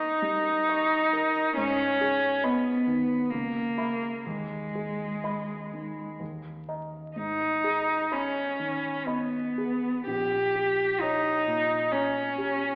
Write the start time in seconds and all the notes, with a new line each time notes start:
Already playing: G2 D#4 A#4 D#5 C#6
0.22 G3
0.69 D#5 C#6
1.13 A#4
1.57 G#2 C#4
2.01 G#4
2.44 B3 D#5 B5
2.87 D#3
3.31 C#2 A#3
3.78 E5 B5
4.25 D#2 G#3
4.75 G#4
5.24 D#5 B5
5.73 D#3
6.20 D#2
6.69 D#5 A#5
7.16 G#2 D#4
7.64 G#4
8.12 C#4 D#5 B5
8.59 D#3
9.06 B3 D#5 B5
9.58 G#4
10.07 A#1 G4
10.55 G4
11.00 D#4 C#5 A#5
11.47 A#2
11.92 C#4 C#5 A#5
12.38 G4